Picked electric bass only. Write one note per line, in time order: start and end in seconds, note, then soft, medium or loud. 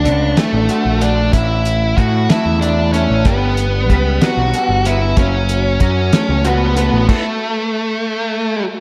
0.05 0.34 C#2 medium
0.53 0.68 A1 medium
0.85 1.30 A#1 medium
1.33 1.94 A1 medium
1.98 2.27 A2 medium
2.46 3.06 E2 medium
3.10 3.25 A1 medium
3.26 3.90 G1 medium
3.90 4.19 C#2 medium
4.37 4.52 B1 medium
4.69 5.13 G1 medium
5.17 5.78 F#1 medium
5.81 6.10 F#2 medium
6.29 6.89 C#2 medium
6.93 7.07 A1 medium